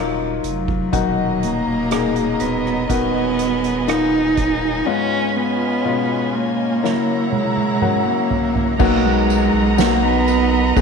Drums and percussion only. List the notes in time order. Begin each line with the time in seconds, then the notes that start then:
0.44 closed hi-hat
0.68 kick
0.93 kick, closed hi-hat
1.43 closed hi-hat
1.91 cross-stick, closed hi-hat
2.16 closed hi-hat
2.40 closed hi-hat
2.66 cross-stick
2.90 kick, closed hi-hat
3.39 closed hi-hat
3.64 closed hi-hat
3.88 cross-stick, closed hi-hat
4.37 kick, closed hi-hat
6.84 snare
7.32 high tom
7.57 high tom
7.82 mid tom
8.31 floor tom
8.55 floor tom
8.80 kick, crash, tambourine
9.30 ride, tambourine
9.78 snare, tambourine
10.27 ride, tambourine
10.77 kick, tambourine